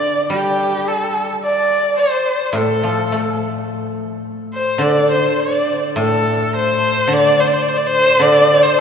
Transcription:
Already playing: D3 D5
0.30 G3 G4
0.88 A4
1.44 D5
1.99 C5
2.47 C5
2.53 A2 A4
2.83 F3
3.12 A3
4.54 C5
4.78 D3 D5
5.11 C5
5.39 D5
5.96 A2 A4
6.56 C5
7.08 D3
7.13 D5
7.40 C5
7.47 D5
7.53 C5
7.62 D5
7.69 C5
7.76 D5
7.87 C5
8.19 D3 D5
8.63 C5

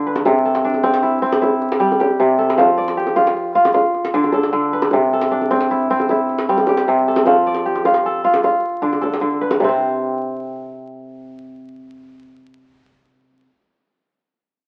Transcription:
Already playing: D3 D4 F4
0.07 B4
0.16 djembe slap, djembe tone
0.25 C3, djembe bass
0.45 A4
0.55 djembe slap
0.65 D4, djembe slap
0.74 djembe tone
0.83 C4, djembe slap, djembe bass
0.94 djembe slap
1.03 E4, djembe slap
1.22 C4
1.33 djembe slap, djembe tone
1.41 E4, djembe bass
1.62 djembe slap
1.72 djembe slap
1.80 G3
1.92 djembe slap, djembe tone
2.00 G4, djembe bass
2.20 C3
2.38 A4
2.50 djembe slap
2.58 F3, djembe bass
2.78 D5
2.88 djembe slap
2.97 G4, djembe slap
3.07 djembe tone
3.16 F4, djembe slap, djembe bass
3.27 djembe slap
3.37 djembe slap
3.55 F4
3.65 djembe slap, djembe tone
3.74 F4, djembe bass
3.94 djembe slap
4.05 djembe slap
4.14 D3 D4
4.24 djembe slap, djembe tone
4.32 A4, djembe bass
4.43 djembe slap
4.53 D3
4.73 B4
4.82 djembe slap, djembe tone
4.91 C3, djembe bass
5.13 A4
5.21 djembe slap
5.31 D4
5.42 djembe tone
5.50 C4, djembe slap, djembe bass
5.61 djembe slap
5.70 E4, djembe slap
5.90 C4
6.00 djembe tone
6.09 E4, djembe bass
6.29 djembe slap
6.38 djembe slap
6.49 G3 C4
6.58 djembe slap, djembe tone
6.67 G4, djembe bass
6.77 djembe slap
6.88 C3
7.08 A4
7.16 djembe slap, djembe tone
7.26 F3, djembe bass
7.36 djembe slap
7.47 D5
7.55 djembe slap
7.66 G4
7.75 djembe tone
7.85 F4, djembe bass
7.94 djembe slap
8.06 A4
8.24 F4
8.34 djembe slap, djembe tone
8.44 F4, djembe bass
8.82 D3 D4, djembe slap
8.93 djembe tone
9.01 A4, djembe slap, djembe bass
9.14 djembe slap
9.21 D3, djembe slap
9.33 djembe slap
9.41 B4
9.51 djembe slap, djembe tone
9.60 C3, djembe bass
9.64 C4
9.69 C5

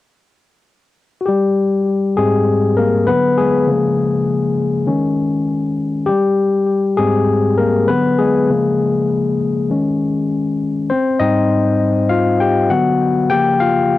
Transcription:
1.21 F#4
1.26 G3 G4
2.17 G#2 G#3 C4 G4 G#4
2.77 A#3 A#4
3.07 D3 F#3 B3 B4
3.38 G#3 G#4
3.67 C#3 F3 A#3
4.87 D#3 G#3 C#4
6.06 G3 G4
6.97 G#2 G#3 C4 G4 G#4
7.58 A#3 A#4
7.88 D3 F#3 B3 B4
8.19 G#3 G#4
8.50 C#3 F3 A#3
9.70 D#3 G#3 C#4
10.90 C4 C5
11.19 G#2 G3 C4 D#4 D#5
12.09 F4 F5
12.40 G4 G5
12.70 D3 F#3 B3 F#4 F#5
13.29 C#3 F3 A#3 G4 G5
13.60 F4 F5

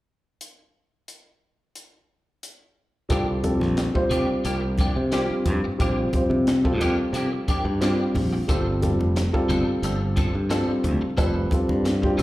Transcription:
0.41 closed hi-hat
1.08 closed hi-hat
1.75 closed hi-hat
2.43 closed hi-hat
3.09 C2 F3 G3 A#3 C4 D4 F4 G4 A4, kick, closed hi-hat
3.28 muted clean electric guitar stroke
3.43 G3 C4 F4 A4, closed hi-hat, high conga, low conga
3.61 A#1, snare, high conga
3.77 muted clean electric guitar stroke, snare, closed hi-hat
3.94 G3 C4 F4 C5, muted clean electric guitar stroke, kick
4.10 C2 F3 A#3 D4 G4, closed hi-hat, low conga
4.29 muted clean electric guitar stroke, muted fingered electric bass stroke
4.44 C2 F3 A#3 D4 G4, closed hi-hat
4.62 muted clean electric guitar stroke
4.78 F3 A#3 D4 G4, kick, closed hi-hat, high conga
4.96 C3, muted clean electric guitar stroke
5.12 F3 G3 A#3 C4 D4 F4 G4, snare, closed hi-hat
5.30 muted fingered electric bass stroke
5.46 G2, muted clean electric guitar stroke, closed hi-hat, high conga, low conga
5.63 muted fingered electric bass stroke, muted clean electric guitar stroke
5.78 A#1 F3 G3 A#3 C4 D4 F4 G4 C5, kick, closed hi-hat
5.99 muted clean electric guitar stroke
6.13 G3 C4 F4 C5, kick, closed hi-hat, high conga, low conga
6.30 C3, high conga
6.47 muted clean electric guitar stroke, snare, closed hi-hat
6.64 G3 C4 F4 A4, muted clean electric guitar stroke, kick
6.79 F2 F3 A#3 D4 G4, closed hi-hat, low conga
6.98 muted clean electric guitar stroke
7.13 C3 F3 A#3 D4 G4, closed hi-hat
7.32 muted clean electric guitar stroke
7.48 F3 A#3 D4 G4, muted fingered electric bass stroke, kick, closed hi-hat, high conga
7.65 G2, muted clean electric guitar stroke
7.80 F3 G3 A#3 C4 D4 F4 G4, snare, closed hi-hat
8.14 A#1, muted clean electric guitar stroke, open hi-hat, high conga, low conga
8.33 muted clean electric guitar stroke
8.48 G1 F3 G3 C4 D4 F4 A4, kick, closed hi-hat
8.67 muted clean electric guitar stroke
8.82 G3 C4 F4 A4, snare, closed hi-hat, high conga, low conga
9.00 F1, high conga
9.16 muted clean electric guitar stroke, snare, closed hi-hat
9.33 G3 C4 F4 A4, muted clean electric guitar stroke, kick
9.49 G1 F3 C4 D4 A4, closed hi-hat, low conga
9.67 muted clean electric guitar stroke, muted fingered electric bass stroke
9.82 G1 F3 C4 D4 A4, closed hi-hat
10.01 muted clean electric guitar stroke
10.16 F3 C4 D4 A4, kick, closed hi-hat, high conga
10.34 G2, muted clean electric guitar stroke
10.50 F3 G3 C4 D4 F4 A4, snare, closed hi-hat
10.68 muted fingered electric bass stroke
10.84 D2, muted clean electric guitar stroke, closed hi-hat, high conga, low conga
11.01 muted clean electric guitar stroke, muted fingered electric bass stroke
11.17 F1 F3 G3 C4 D4 F4 A4 B4, kick, closed hi-hat, low conga
11.36 muted clean electric guitar stroke
11.51 G3 C4 F4 A4, kick, closed hi-hat, high conga, low conga
11.69 G2, high conga
11.85 muted clean electric guitar stroke, snare, closed hi-hat
12.02 G3 C4 F4 G4, muted clean electric guitar stroke, kick
12.17 C2 F3 C4 D4 A4, closed hi-hat, low conga

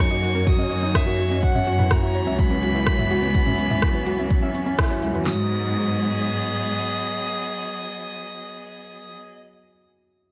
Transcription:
Already playing: F#2 D#3 F#3 A#3 C#4 D#4 F#4 C#5
0.00 C#6
0.10 F#4 D#5
0.22 F#3 F#4, shaker
0.34 C#4 A#4, shaker
0.46 F#3 F#4 D#6, kick, shaker
0.58 C#4 D#5
0.70 F#2 F#3 C#5, shaker
0.82 D#4 D#5, shaker
0.94 F#3 F#4 E5, kick, cross-stick, shaker
1.06 F#4 A#4
1.19 F#3 F#4, shaker
1.31 C#4 D#5, shaker
1.43 E3 F#3 C#5 F#5, kick, shaker
1.52 B3 C#4 E5, mid tom
1.67 F#2 F#3 F#4, shaker
1.79 E4 B4, mid tom, shaker
1.91 F#3 A#5, kick, cross-stick, shaker
2.03 F#4 E5
2.14 F#3 C#5, shaker
2.27 C#2 C#4 E5, shaker
2.38 F#3 F#4 B5, kick, shaker
2.51 C#4 B4
2.62 F#3 F#4, shaker
2.74 E4 E5, shaker
2.87 F#3 C#5, kick, cross-stick, shaker
2.98 F#4 E5, mid tom
3.10 F#3 F#4, shaker
3.22 C#4 B4, shaker
3.35 F#3 F#4, kick, shaker
3.46 C#4 E5, mid tom
3.58 F#3 C#5, shaker
3.70 E4 E5, mid tom, shaker
3.82 F#3 F#4, kick, cross-stick, shaker
3.94 F#4 B4
4.06 F#3 F#4, shaker
4.18 C#4 E5, shaker
4.30 F#3 C#5, kick, shaker
4.42 C#4 E5
4.54 C#4 C#6, shaker
4.66 C#4 C#5, shaker
4.78 E4 B5, kick, cross-stick, shaker
4.90 F#4 C#5
5.02 C#2 F#3 E5, shaker
5.14 E2 F#3 B4, shaker
5.26 G#2 F#3 F#4 D#6, snare
5.34 B3
5.41 G#4
5.48 D#5

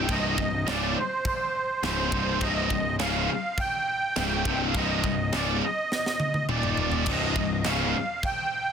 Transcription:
Already playing: G5
0.09 C1 C2 G2 C3 D#5, kick, china
0.38 C1 C2 G2, kick
0.67 C#1 C#2 G#2 C#3 D5, snare, china
0.97 C5
1.25 kick, china
1.83 C#1 C#2 G#2 C#3 C5, snare, china
2.12 C1 C2 G2 C3, kick
2.41 C1 C2 G2 C3 D#5, kick, china
2.70 C1 C2 G2, kick
2.99 C#1 C#2 G#2 C#3 F5, snare, china
3.58 G5, kick, china
4.16 C#1 C#2 G#2 C#3, snare, china
4.45 C1 C2 G2 C3, kick
4.68 F5
4.74 C1 C2 G2 C3 D#5, kick, china
5.03 C1 C2 G2, kick
5.32 C#1 C#2 G#2 C#3 D5, snare, china
5.64 D#5
5.92 snare
6.06 snare
6.20 high tom
6.34 high tom
6.49 D#1 D#2 A#2 D#3 D5, mid tom
6.63 mid tom
6.77 floor tom
6.92 floor tom
7.06 C1 C2 G2 C3 D#5, kick, china, crash
7.36 C1 C2 G2, kick
7.64 C#1 C#2 G#2 C#3 F5, snare, china
8.23 G5, kick, china

